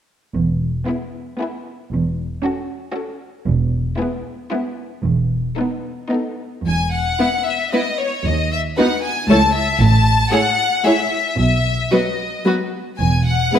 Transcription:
0.34 0.77 E1 soft
0.34 0.76 E2 soft
0.88 1.26 B3 soft
0.88 1.26 E4 soft
0.88 1.26 G#4 soft
1.40 1.78 B3 soft
1.40 1.78 E4 soft
1.40 1.79 G#4 soft
1.91 2.32 E1 soft
1.91 2.32 E2 soft
2.43 2.81 C#4 soft
2.43 2.81 F#4 soft
2.43 2.81 A4 soft
2.93 3.32 C#4 soft
2.93 3.32 F#4 soft
2.93 3.33 A4 soft
3.46 3.87 E1 medium
3.46 3.87 E2 soft
3.98 4.37 B3 soft
3.98 4.37 E4 soft
3.98 4.38 G#4 soft
4.51 4.90 B3 soft
4.51 4.90 E4 soft
4.51 4.91 G#4 soft
5.04 5.47 E1 soft
5.04 5.46 E2 soft
5.58 5.98 B3 soft
5.58 5.98 D#4 soft
5.58 5.98 A4 soft
6.11 6.53 B3 soft
6.11 6.53 D#4 soft
6.11 6.53 A4 soft
6.67 7.09 E1 soft
6.67 7.09 E2 soft
6.67 6.92 G#5 soft
6.93 7.45 F#5 medium
7.19 7.28 B3 soft
7.19 7.28 E4 soft
7.19 7.28 B4 soft
7.46 7.72 E5 soft
7.72 7.81 B3 soft
7.72 7.81 E4 soft
7.72 7.81 B4 soft
7.72 7.99 D#5 soft
7.99 8.26 C#5 soft
8.25 8.67 D#2 soft
8.25 8.67 D#2 medium
8.25 8.53 D#5 medium
8.52 8.60 E5 medium
8.78 8.86 B3 soft
8.78 8.86 D#4 soft
8.78 8.87 F#4 soft
8.78 8.86 B4 soft
8.78 9.03 F#5 medium
9.03 9.29 G#5 medium
9.29 9.70 C#2 medium
9.29 9.37 A3 soft
9.29 9.37 E4 soft
9.29 9.38 A4 soft
9.29 9.38 C#5 soft
9.29 9.54 A5 medium
9.54 9.79 E5 medium
9.80 10.21 A1 medium
9.80 10.20 A2 medium
9.80 10.31 A5 medium
10.31 10.39 A3 soft
10.31 10.39 E4 soft
10.31 10.40 G#4 soft
10.31 10.40 C#5 soft
10.31 10.84 F#5 medium
10.84 10.92 A3 soft
10.84 10.92 E4 soft
10.84 10.93 G#4 soft
10.84 10.93 C#5 soft
10.84 11.38 E5 medium
11.38 11.80 B1 soft
11.38 11.81 B2 soft
11.38 11.91 E5 medium
11.91 11.99 F#3 soft
11.91 11.99 B3 soft
11.91 12.00 F#4 soft
11.91 12.00 B4 soft
11.91 12.46 D#5 soft
12.45 12.53 F#3 soft
12.45 12.53 B3 soft
12.45 12.54 F#4 soft
12.45 12.54 B4 soft
12.99 13.42 E1 soft
12.99 13.42 E2 soft
12.99 13.24 G#5 medium
13.26 13.59 F#5 medium
13.53 13.59 G#3 soft
13.53 13.59 B3 soft
13.53 13.59 E4 soft
13.53 13.59 B4 soft

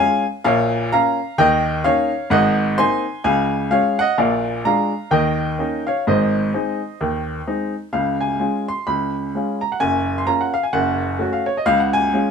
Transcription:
0.00 0.23 G#3 soft
0.00 0.23 C#4 medium
0.00 0.23 F4 medium
0.00 0.23 F5 medium
0.00 0.25 G#5 loud
0.44 0.84 A#1 medium
0.44 0.84 A#2 loud
0.44 0.89 C#5 medium
0.44 0.91 F5 loud
0.92 1.18 A#3 soft
0.92 1.18 C#4 medium
0.92 1.18 F4 medium
0.92 1.36 F5 medium
0.92 1.38 A#5 loud
1.38 1.78 D#2 medium
1.38 1.78 D#3 medium
1.38 1.82 D#5 medium
1.38 1.85 G5 loud
1.84 2.10 A#3 medium
1.84 2.10 C#4 medium
1.84 2.11 D#4 medium
1.84 2.28 C#5 medium
1.84 2.31 F5 loud
2.30 2.71 G#1 medium
2.30 2.70 G#2 medium
2.30 2.75 D#5 medium
2.30 2.78 F#5 loud
2.78 3.04 A#3 medium
2.78 3.04 C4 medium
2.78 3.04 D#4 medium
2.78 3.22 G#5 medium
2.78 3.25 C6 loud
3.24 3.64 C#2 medium
3.24 3.64 C#3 medium
3.24 3.69 F5 medium
3.24 3.71 G#5 medium
3.71 3.97 G#3 medium
3.71 3.97 C#4 medium
3.71 3.97 F4 medium
3.71 3.97 C#5 medium
3.71 3.99 F5 loud
3.99 4.18 D#5 medium
3.99 4.18 F#5 medium
4.18 4.58 A#1 medium
4.18 4.58 A#2 medium
4.18 4.62 D5 medium
4.18 4.65 F5 medium
4.65 4.91 G#3 medium
4.65 4.91 D4 medium
4.65 4.92 F4 medium
4.65 5.09 F5 medium
4.65 5.12 A#5 medium
5.11 5.51 D#2 medium
5.11 5.51 D#3 medium
5.11 5.82 D#5 medium
5.11 5.86 G5 medium
5.59 5.84 A#3 soft
5.59 5.84 C#4 soft
5.59 5.85 D#4 medium
5.87 6.05 C#5 medium
5.87 6.05 F5 medium
6.07 6.46 G#1 medium
6.07 6.46 G#2 medium
6.07 7.70 C5 medium
6.07 7.74 D#5 medium
6.54 6.79 G#3 soft
6.54 6.79 C4 soft
6.54 6.79 D#4 soft
7.01 7.39 D#2 medium
7.01 7.40 D#3 medium
7.47 7.72 G#3 soft
7.47 7.73 C4 soft
7.47 7.73 D#4 medium
7.93 8.33 C#2 medium
7.93 8.32 C#3 medium
7.93 8.20 F5 medium
8.21 8.67 G#5 medium
8.39 8.65 G#3 soft
8.39 8.66 C#4 soft
8.39 8.66 F4 soft
8.68 8.87 C6 medium
8.87 9.26 C#2 medium
8.87 9.26 C#3 medium
8.87 9.61 B5 medium
9.35 9.60 G#3 soft
9.35 9.60 C#4 soft
9.35 9.61 F4 soft
9.61 9.70 A#5 medium
9.72 9.80 F#5 medium
9.80 10.20 F#1 medium
9.80 10.20 F#2 medium
9.80 10.17 G#5 medium
10.18 10.27 C6 medium
10.27 10.53 A#3 soft
10.27 10.53 C#4 soft
10.27 10.53 F4 medium
10.27 10.40 A#5 medium
10.41 10.54 F#5 medium
10.54 10.63 F5 medium
10.63 10.73 G#5 medium
10.73 11.13 F#1 medium
10.73 11.13 F#2 medium
10.73 11.34 F#5 medium
11.19 11.45 A3 soft
11.19 11.46 C#4 soft
11.19 11.46 F#4 medium
11.33 11.47 F5 medium
11.46 11.57 C#5 medium
11.57 11.67 D#5 medium
11.66 12.06 C#2 medium
11.66 12.06 C#3 medium
11.66 11.80 F5 loud
11.80 11.94 F#5 medium
11.93 12.31 G#5 loud
12.13 12.31 G#3 medium
12.13 12.31 C#4 medium
12.13 12.31 F4 medium

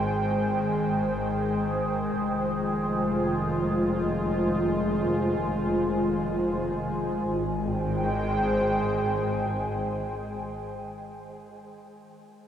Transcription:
0.00 2.15 G#1 medium
0.00 7.25 D#3 medium
0.00 7.26 G#3 medium
0.00 7.27 G#3 medium
0.00 7.26 G#4 medium
0.00 7.27 C5 medium
0.00 3.41 G5 medium
2.20 7.22 F1 medium
2.41 7.27 F4 medium
7.26 10.56 G#1 medium
7.26 10.56 D#3 medium
7.26 10.65 G#3 medium
7.26 10.65 G#4 medium
7.38 10.55 G#3 medium
7.52 10.56 G5 medium
7.64 10.56 C5 medium

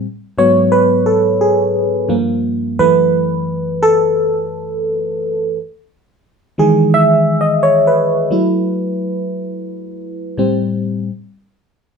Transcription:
0.38 1.37 G#2 medium
0.38 1.37 F#3 medium
0.38 1.37 B3 medium
0.38 0.70 C#5 medium
0.72 1.07 B4 medium
1.06 1.38 A4 medium
1.41 2.06 G#4 medium
2.08 2.58 G2 medium
2.08 2.58 F3 medium
2.08 2.58 A#3 medium
2.79 3.28 F#2 medium
2.79 3.28 E3 medium
2.79 3.28 A3 medium
2.79 3.86 B4 medium
3.83 5.51 A4 medium
6.58 8.27 D#3 medium
6.58 8.26 E3 medium
6.58 8.27 G#3 soft
6.58 6.73 G#4 medium
6.94 7.36 E5 loud
7.41 7.51 D#5 medium
7.63 7.84 C#5 medium
7.87 8.51 B4 medium
8.31 8.79 F#3 soft
8.31 8.80 A3 soft
8.31 8.80 E4 medium
10.38 11.03 A2 medium
10.38 11.03 G3 medium
10.38 11.04 C4 medium

